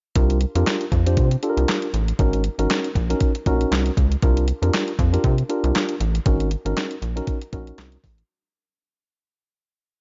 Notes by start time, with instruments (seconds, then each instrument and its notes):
0.15 analog synth bass C2, tine electric piano D4 F4 G4 A#4, kick, closed hi-hat
0.30 closed hi-hat
0.41 closed hi-hat
0.55 analog synth bass F2, tine electric piano D4 F4 G4 A#4, closed hi-hat
0.66 snare, clap, closed hi-hat
0.81 closed hi-hat
0.92 analog synth bass F2, kick, closed hi-hat
1.06 tine electric piano D4 F4 G4 C5, closed hi-hat
1.17 analog synth bass C3, kick, closed hi-hat
1.31 closed hi-hat
1.43 tine electric piano D4 F4 G4 A4, closed hi-hat
1.50 tine electric piano A#4
1.57 analog synth bass C2, closed hi-hat
1.68 snare, clap, closed hi-hat
1.82 closed hi-hat
1.94 analog synth bass A1, closed hi-hat
2.08 closed hi-hat
2.19 analog synth bass G#1, tine electric piano C#4 D#4 F#4 A#4, kick, closed hi-hat
2.33 closed hi-hat
2.44 closed hi-hat
2.58 analog synth bass G#1, tine electric piano C#4 D#4 F#4 A#4, closed hi-hat
2.70 snare, clap, closed hi-hat
2.84 closed hi-hat
2.95 analog synth bass A#1, kick, closed hi-hat
3.10 tine electric piano C#4 D#4 F#4 A#4, closed hi-hat
3.20 kick, closed hi-hat
3.35 closed hi-hat
3.46 analog synth bass A#1, tine electric piano C#4 D#4 F#4 A#4, kick, closed hi-hat
3.61 closed hi-hat
3.71 analog synth bass C2, snare, clap, closed hi-hat
3.86 closed hi-hat
3.97 analog synth bass C#2, kick, closed hi-hat
4.12 closed hi-hat
4.22 analog synth bass C2, tine electric piano D4 F4 G4 A#4, kick, closed hi-hat
4.37 closed hi-hat
4.48 closed hi-hat
4.62 analog synth bass F2, tine electric piano D4 F4 G4 A#4, closed hi-hat
4.73 snare, clap, closed hi-hat
4.88 closed hi-hat
4.99 analog synth bass F2, kick, closed hi-hat
5.13 tine electric piano D4 F4 G4 A#4, closed hi-hat
5.24 analog synth bass C3, kick, closed hi-hat
5.38 closed hi-hat
5.49 tine electric piano D4 F4 G4 A#4, closed hi-hat
5.64 analog synth bass C2, closed hi-hat
5.75 snare, clap, closed hi-hat
5.89 closed hi-hat
6.00 analog synth bass A1, closed hi-hat
6.15 closed hi-hat
6.26 analog synth bass G#1, tine electric piano C#4 D#4 F#4 A#4, kick, closed hi-hat
6.40 closed hi-hat
6.51 closed hi-hat
6.65 analog synth bass G#1, tine electric piano C#4 D#4 F#4 A#4, closed hi-hat
6.77 snare, clap, closed hi-hat
6.91 closed hi-hat
7.02 analog synth bass A#1, closed hi-hat
7.16 tine electric piano C#4 D#4 F#4 A#4, closed hi-hat
7.27 kick, closed hi-hat
7.42 closed hi-hat
7.53 analog synth bass A#1, tine electric piano C#4 D#4 F#4 A#4, kick, closed hi-hat
7.67 closed hi-hat
7.78 analog synth bass C2, snare, clap, closed hi-hat
7.92 closed hi-hat
8.04 analog synth bass A1, kick, open hi-hat
8.18 closed hi-hat